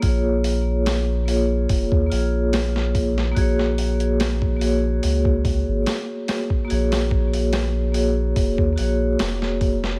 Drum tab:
HH |o-o-o-o-o-o-o-o-|o-oxo-o-o-o-o-o-|oo-oo-o-o-o-o-o-|
SD |----o-------oo-o|-o--o-------o-o-|-o--o-------oo-o|
BD |o-------oo----o-|o----o---oo----o|--o-----oo----o-|